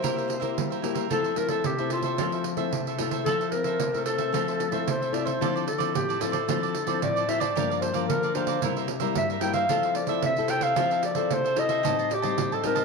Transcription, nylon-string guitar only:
0.04 0.55 C3 medium
0.04 0.39 A#3 medium
0.04 0.40 E4 soft
0.04 0.40 G4 medium
0.42 0.79 A#3 medium
0.42 0.79 E4 soft
0.42 0.79 G4 medium
0.58 1.09 G3 medium
0.83 1.08 A#3 medium
0.83 1.09 E4 medium
0.83 1.09 G4 medium
1.11 1.62 F3 medium
1.11 1.34 A3 soft
1.11 1.34 C4 soft
1.11 1.34 E4 medium
1.37 1.74 A3 soft
1.37 1.74 C4 soft
1.37 1.74 E4 medium
1.65 2.16 C3 medium
1.79 2.15 A3 medium
1.79 2.15 C4 medium
1.79 2.15 E4 medium
2.19 2.70 F3 medium
2.19 2.55 A3 soft
2.19 2.55 C4 medium
2.57 2.94 A3 soft
2.57 2.94 C4 medium
2.57 2.94 E4 medium
2.72 3.23 C3 medium
2.99 3.34 A3 medium
2.99 3.34 C4 medium
2.99 3.34 E4 medium
3.26 3.77 F3 medium
3.53 3.89 C4 medium
3.53 3.89 E4 soft
3.80 4.31 C3 medium
3.94 4.30 A3 medium
3.94 4.30 C4 medium
3.94 4.30 E4 medium
4.33 4.85 F3 medium
4.33 4.69 A3 soft
4.33 4.70 C4 medium
4.33 4.70 E4 soft
4.72 5.09 A3 medium
4.72 5.09 C4 soft
4.72 5.09 E4 medium
4.87 5.38 C3 medium
5.12 5.30 A3 medium
5.12 5.31 C4 medium
5.12 5.31 E4 medium
5.41 5.92 D3 medium
5.41 5.66 F3 medium
5.41 5.66 C4 medium
5.41 5.67 E4 medium
5.79 6.16 F3 medium
5.79 6.16 C4 medium
5.79 6.16 E4 medium
5.95 6.46 A2 medium
6.21 6.37 F3 medium
6.21 6.37 C4 medium
6.21 6.38 E4 medium
6.49 7.00 D3 medium
6.49 6.74 F3 medium
6.49 6.74 C4 medium
6.49 6.74 E4 medium
6.87 7.24 F3 medium
6.87 7.24 C4 medium
6.87 7.24 E4 medium
7.03 7.53 A2 medium
7.28 7.44 F3 medium
7.28 7.44 C4 medium
7.28 7.45 E4 medium
7.56 8.07 G2 medium
7.56 7.92 F3 medium
7.56 7.92 A#3 medium
7.56 7.92 D4 medium
7.95 8.31 F3 medium
7.95 8.31 A#3 medium
7.95 8.32 D4 medium
8.10 8.60 D3 medium
8.35 8.58 F3 medium
8.35 8.58 A#3 medium
8.35 8.58 D4 medium
8.64 9.14 C3 medium
8.64 8.88 G3 medium
8.64 8.89 A#3 medium
8.64 8.89 E4 medium
9.02 9.38 G3 medium
9.02 9.38 A#3 medium
9.02 9.38 E4 medium
9.15 9.67 G2 medium
9.41 9.65 G3 medium
9.41 9.65 A#3 medium
9.41 9.65 E4 medium
9.69 10.21 F3 medium
9.69 10.06 C4 medium
9.69 10.06 E4 medium
9.69 10.06 A4 medium
10.07 10.31 C4 medium
10.07 10.31 E4 medium
10.07 10.32 A4 medium
10.24 10.74 C3 medium
10.38 10.73 C4 medium
10.38 10.73 E4 medium
10.38 10.74 A4 medium
10.77 11.28 F3 medium
10.77 11.02 C4 medium
10.77 11.02 E4 medium
10.77 11.02 A4 medium
11.16 11.52 C4 medium
11.16 11.53 E4 medium
11.16 11.53 A4 medium
11.31 11.82 C3 medium
11.57 11.80 C4 medium
11.57 11.80 E4 medium
11.57 11.80 A4 medium
11.85 12.36 A2 medium
11.85 12.10 G3 medium
11.85 12.10 C4 medium
11.85 12.10 D#4 medium
12.23 12.60 G3 medium
12.23 12.60 C4 medium
12.23 12.60 D#4 medium
12.38 12.85 A2 medium
12.64 12.85 G3 medium
12.64 12.85 C4 medium
12.64 12.85 D#4 medium

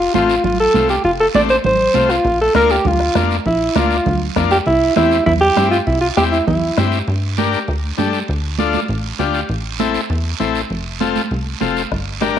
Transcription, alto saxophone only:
0.00 0.12 F4 medium
0.15 0.43 F4 medium
0.45 0.59 F4 medium
0.60 0.88 A4 loud
0.90 1.04 G4 medium
1.05 1.12 F4 loud
1.20 1.27 A4 medium
1.35 1.42 D5 loud
1.50 1.57 C5 loud
1.66 2.12 C5 loud
2.11 2.41 F4 medium
2.41 2.55 A4 medium
2.56 2.73 A#4 loud
2.71 2.89 G4 medium
2.87 3.32 F4 medium
3.47 3.78 E4 medium
3.76 4.21 F4 medium
4.51 4.58 G4 medium
4.67 4.95 E4 loud
4.96 5.25 E4 medium
5.26 5.33 E4 medium
5.41 5.69 G4 loud
5.71 5.78 F4 medium
5.87 6.00 E4 medium
6.01 6.08 F4 medium
6.17 6.24 G4 medium
6.32 6.46 E4 medium
6.47 6.89 E4 medium

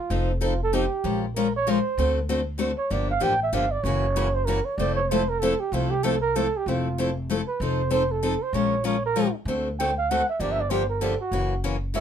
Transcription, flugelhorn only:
0.00 0.30 F4 medium
0.43 0.60 F4 medium
0.63 0.76 A4 medium
0.74 1.24 G4 medium
1.35 1.53 A#4 medium
1.56 1.71 C#5 loud
1.69 2.18 C5 medium
2.78 2.93 C#5 medium
2.92 3.10 D5 medium
3.11 3.25 F5 loud
3.23 3.42 G5 loud
3.43 3.55 E5 medium
3.53 3.73 F5 medium
3.71 3.84 D5 medium
3.83 4.36 C#5 medium
4.34 4.47 C5 medium
4.45 4.66 A#4 medium
4.65 4.79 C#5 medium
4.78 4.95 D5 loud
4.95 5.10 C#5 medium
5.09 5.30 C5 medium
5.29 5.41 A#4 medium
5.39 5.61 A4 medium
5.60 5.75 G4 medium
5.73 5.92 F4 medium
5.90 6.05 G4 medium
6.03 6.21 A4 medium
6.22 6.37 A#4 loud
6.36 6.59 A4 medium
6.57 6.70 G4 medium
6.68 7.17 F4 medium
7.48 7.64 B4 medium
7.62 7.92 C5 medium
7.93 8.13 C5 medium
8.11 8.44 A4 medium
8.42 8.56 C5 medium
8.54 8.85 C#5 medium
8.86 9.03 C#5 medium
9.06 9.34 A#4 medium
9.79 9.96 G5 medium
9.98 10.12 F5 medium
10.10 10.29 F#5 medium
10.30 10.42 E5 medium
10.40 10.53 D5 medium
10.51 10.62 E5 loud
10.61 10.71 D5 medium
10.70 10.89 C5 medium
10.89 11.03 A#4 medium
11.01 11.20 A4 medium
11.21 11.62 F#4 medium
11.95 12.00 E5 medium

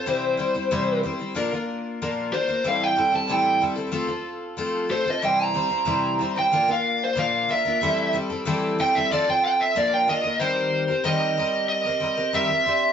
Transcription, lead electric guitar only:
0.00 1.00 C5 loud
2.33 2.64 C5 medium
2.68 2.83 F5 medium
2.83 3.14 G5 loud
3.16 3.32 A5 medium
3.32 3.62 G5 medium
4.91 5.07 C5 loud
5.10 5.24 D#5 medium
5.25 5.43 G5 medium
5.43 6.35 A#5 medium
6.39 6.69 G5 medium
6.72 7.02 F5 medium
7.04 7.18 C5 medium
7.19 7.49 F5 medium
7.51 8.13 E5 medium
8.81 8.96 G5 medium
8.95 9.11 E5 medium
9.12 9.27 D5 medium
9.30 9.44 G5 medium
9.45 9.60 G5 loud
9.60 9.77 E5 medium
9.77 9.92 D5 medium
9.94 10.08 G5 medium
10.09 10.40 D#5 medium
10.40 11.06 C5 medium
11.05 11.68 D#5 medium
11.69 12.35 D#5 loud
12.35 12.93 E5 loud

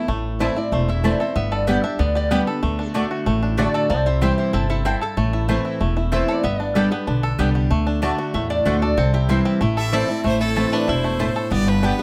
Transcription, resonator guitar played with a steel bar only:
0.41 0.56 E5 medium
0.57 0.72 D5 medium
0.73 0.88 C5 medium
0.89 1.04 E5 medium
1.05 1.20 D5 medium
1.21 1.36 C5 medium
1.36 1.51 E5 loud
1.52 1.66 D5 medium
1.67 1.83 D5 medium
1.84 1.99 E5 medium
1.99 2.15 D5 medium
2.16 2.31 D5 medium
2.31 2.93 B4 loud
3.57 3.73 A4 medium
3.57 3.73 D5 loud
3.74 3.88 A4 medium
3.74 3.89 D5 medium
3.90 4.05 A4 medium
3.90 4.06 D5 loud
4.06 4.21 G4 medium
4.06 4.21 C5 medium
4.22 4.37 G4 medium
4.22 4.38 C5 medium
4.39 4.53 G4 medium
4.39 4.54 C5 medium
4.53 4.68 E4 medium
4.53 4.69 A4 loud
4.69 4.84 E4 medium
4.69 4.84 A4 medium
4.85 5.00 E4 medium
4.85 5.01 A4 medium
5.02 5.94 A4 medium
6.13 6.28 E5 loud
6.28 6.44 D5 loud
6.44 6.60 E5 medium
6.60 6.75 D5 medium
6.76 6.91 A4 medium
6.92 7.23 B4 medium
8.03 8.18 A5 medium
8.34 8.50 E5 medium
8.50 8.65 D5 loud
8.66 8.82 C5 medium
8.82 8.97 D5 medium
8.97 9.13 A4 loud
9.14 9.29 G4 loud
9.29 9.45 E4 medium
9.45 9.60 G4 medium
9.62 10.23 E4 loud
9.79 9.94 G4 medium
9.94 10.25 A4 medium
10.26 10.40 E4 medium
10.41 10.73 C4 medium
10.73 10.89 D4 medium
10.89 11.52 E4 medium
11.52 11.68 G4 medium
11.68 12.03 D4 medium

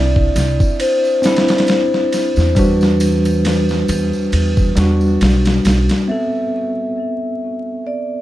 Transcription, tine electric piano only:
0.00 1.19 C4 medium
0.00 1.20 D4 medium
0.00 1.21 E4 medium
1.22 2.51 C4 medium
1.22 2.52 D4 medium
1.26 2.53 E4 medium
2.55 4.71 G3 medium
2.55 4.73 D4 medium
2.59 4.73 F#4 medium
4.75 6.04 G3 medium
4.75 6.05 D4 medium
4.80 6.06 F#4 medium
6.08 8.22 B3 medium
6.08 8.22 C4 medium
6.08 8.22 A4 medium

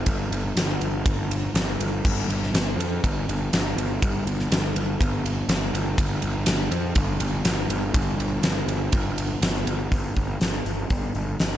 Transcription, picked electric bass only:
0.06 0.27 G1 loud
0.31 0.52 G1 medium
0.56 0.77 G1 medium
0.80 1.01 G1 medium
1.06 1.47 G1 medium
1.54 1.75 G1 medium
1.79 2.00 G1 medium
2.05 2.25 G1 medium
2.28 2.49 G1 medium
2.52 2.74 G1 medium
2.77 2.98 F2 medium
3.04 3.24 G1 medium
3.28 3.48 G1 medium
3.53 3.73 G1 medium
3.77 3.97 G1 loud
4.02 4.23 G1 medium
4.25 4.46 G1 medium
4.51 4.71 G1 medium
4.75 4.96 G1 medium
5.01 5.41 G1 loud
5.48 5.69 G1 loud
5.73 5.94 G1 loud
5.98 6.19 G1 medium
6.23 6.43 G1 medium
6.47 6.68 G1 medium
6.71 6.92 F2 medium
6.95 7.16 G1 medium
7.20 7.41 G1 loud
7.45 7.66 G1 loud
7.68 7.90 G1 loud
7.94 8.15 G1 loud
8.17 8.38 G1 medium
8.41 8.63 G1 medium
8.66 8.88 G1 medium
8.93 9.34 G1 loud
9.41 9.62 G1 loud
9.66 9.87 G1 medium
9.91 10.10 G1 medium
10.16 10.35 G1 medium
10.41 10.59 G1 medium
10.65 10.84 G1 medium
10.90 11.09 G1 medium
11.15 11.34 G1 medium
11.40 11.57 G1 medium

